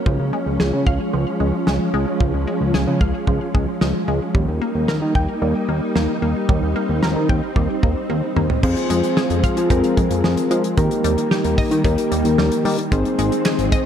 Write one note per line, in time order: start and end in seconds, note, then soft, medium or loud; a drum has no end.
0.00 4.31 C#4 medium
0.06 0.18 C#2 loud
0.06 4.31 F3 medium
0.06 0.21 F3 medium
0.06 4.31 G#3 medium
0.06 kick loud
0.20 0.32 C#2 loud
0.33 0.48 G#3 medium
0.46 0.59 C#2 loud
0.60 0.72 C#2 loud
0.60 0.75 G#4 medium
0.60 snare loud
0.73 0.85 C#3 loud
0.87 0.99 C#2 loud
0.87 1.01 F5 medium
0.87 kick medium
1.13 1.26 C#2 loud
1.13 1.28 F3 medium
1.40 1.52 C#2 loud
1.40 1.55 G#3 medium
1.67 1.79 C#2 medium
1.67 1.82 G#3 medium
1.67 snare loud
1.94 2.06 C#2 loud
1.94 2.08 G#3 medium
2.20 2.33 C#2 loud
2.20 2.35 F3 medium
2.20 kick loud
2.34 2.46 C#2 loud
2.47 2.62 G#3 medium
2.61 2.73 C#2 medium
2.74 2.86 C#2 loud
2.74 2.89 G#4 medium
2.74 snare loud
2.87 3.00 C#3 loud
3.01 3.13 C#2 loud
3.01 3.16 F5 medium
3.01 kick medium
3.27 3.40 C#2 medium
3.27 3.42 F3 medium
3.27 kick medium
3.54 3.67 C#2 loud
3.54 3.69 G#3 medium
3.54 kick medium
3.81 3.93 C#2 loud
3.81 3.96 G#3 medium
3.81 snare loud
4.08 4.20 C#2 loud
4.08 4.23 G#3 medium
4.35 4.47 D#2 loud
4.35 4.49 G3 medium
4.35 8.59 G3 medium
4.35 6.47 A#3 medium
4.35 8.59 D#4 medium
4.35 kick loud
4.48 4.60 D#2 loud
4.62 4.76 A#3 medium
4.75 4.87 D#2 medium
4.88 5.01 D#2 loud
4.88 5.03 A#4 medium
4.88 snare loud
5.02 5.14 D#3 loud
5.15 5.27 D#2 loud
5.15 5.30 G5 medium
5.15 kick medium
5.42 5.54 D#2 loud
5.42 5.57 G3 medium
5.69 5.81 D#2 medium
5.69 5.83 A#3 medium
5.95 6.08 D#2 loud
5.95 6.10 A#3 medium
5.95 snare loud
6.22 6.34 D#2 loud
6.22 6.37 A#3 medium
6.49 6.61 D#2 loud
6.49 6.64 G3 medium
6.49 8.61 C4 medium
6.49 kick loud
6.62 6.75 D#2 loud
6.76 6.91 A#3 medium
6.89 7.01 D#2 loud
7.03 7.15 D#2 loud
7.03 7.17 A#4 medium
7.03 snare loud
7.16 7.28 D#3 loud
7.29 7.42 D#2 loud
7.29 7.44 G5 medium
7.29 kick medium
7.56 7.68 D#2 loud
7.56 7.71 G3 medium
7.56 kick medium
7.83 7.95 D#2 medium
7.83 7.98 A#3 medium
7.83 kick medium
8.10 8.22 D#2 loud
8.10 8.24 A#3 medium
8.10 high tom medium
8.36 8.49 D#2 loud
8.36 8.51 A#3 medium
8.36 mid tom medium
8.50 floor tom medium
8.63 8.76 F2 loud
8.63 8.78 F3 medium
8.63 10.76 F3 medium
8.63 10.75 G#3 medium
8.63 9.57 C4 medium
8.63 10.75 C4 medium
8.63 9.57 F4 medium
8.63 9.57 G#4 medium
8.63 9.57 C5 medium
8.63 kick loud
8.63 crash medium
8.77 closed hi-hat soft
8.90 9.02 F2 loud
8.90 9.05 G#3 medium
8.90 closed hi-hat medium
9.04 closed hi-hat soft
9.17 9.32 G#4 medium
9.17 snare loud
9.30 9.42 F2 loud
9.30 closed hi-hat medium
9.44 9.58 F5 medium
9.44 kick medium
9.44 closed hi-hat medium
9.57 9.69 F3 loud
9.57 closed hi-hat medium
9.70 9.83 F2 loud
9.70 9.85 F3 medium
9.70 10.64 C4 medium
9.70 10.64 F4 medium
9.70 10.64 G#4 medium
9.70 10.64 A#4 medium
9.70 kick medium
9.70 closed hi-hat medium
9.84 closed hi-hat medium
9.97 10.10 F2 loud
9.97 10.12 G#3 medium
9.97 kick medium
9.97 closed hi-hat medium
10.11 10.23 F2 loud
10.11 closed hi-hat medium
10.24 10.36 F2 loud
10.24 10.39 G#3 medium
10.24 snare loud
10.37 closed hi-hat medium
10.51 10.63 F3 loud
10.51 10.66 G#3 medium
10.51 closed hi-hat medium
10.64 closed hi-hat medium
10.78 10.90 D#2 loud
10.78 10.92 D#3 medium
10.78 12.90 D#3 medium
10.78 12.90 G3 medium
10.78 11.71 A#3 medium
10.78 12.90 A#3 medium
10.78 11.71 D#4 medium
10.78 11.71 G4 medium
10.78 11.71 A#4 medium
10.78 kick loud
10.78 closed hi-hat medium
10.91 closed hi-hat soft
11.04 11.17 D#2 loud
11.04 11.19 G3 medium
11.04 closed hi-hat medium
11.18 closed hi-hat soft
11.31 11.46 G4 medium
11.31 snare loud
11.44 11.57 D#2 loud
11.44 closed hi-hat medium
11.58 11.73 D#5 medium
11.58 kick medium
11.58 open hi-hat medium
11.71 11.84 D#3 loud
11.71 closed hi-hat medium
11.85 11.97 D#2 loud
11.85 11.99 D#3 medium
11.85 12.78 A#3 medium
11.85 12.78 D#4 medium
11.85 12.78 G4 medium
11.85 12.78 A#4 medium
11.85 kick medium
11.85 closed hi-hat medium
11.98 closed hi-hat medium
12.12 12.24 D#2 loud
12.12 12.26 G3 medium
12.12 closed hi-hat medium
12.25 12.37 D#2 medium
12.25 closed hi-hat medium
12.38 12.51 D#2 loud
12.38 12.53 G3 medium
12.38 snare loud
12.52 closed hi-hat medium
12.65 12.77 D#3 loud
12.65 12.80 G3 medium
12.65 open hi-hat medium
12.78 closed hi-hat medium
12.92 13.04 G#1 loud
12.92 13.86 D#3 medium
12.92 13.07 D#3 medium
12.92 13.86 G#3 medium
12.92 13.86 C4 medium
12.92 13.85 C4 medium
12.92 13.85 D#4 medium
12.92 13.85 G#4 medium
12.92 13.85 C5 medium
12.92 kick loud
12.92 closed hi-hat medium
13.05 closed hi-hat soft
13.19 13.31 G#1 loud
13.19 13.33 G#3 medium
13.19 closed hi-hat medium
13.32 closed hi-hat soft
13.45 13.60 G#4 medium
13.45 snare loud
13.45 clap medium
13.59 13.71 G#1 loud
13.59 closed hi-hat medium
13.72 13.86 D#5 medium
13.72 kick medium
13.72 closed hi-hat medium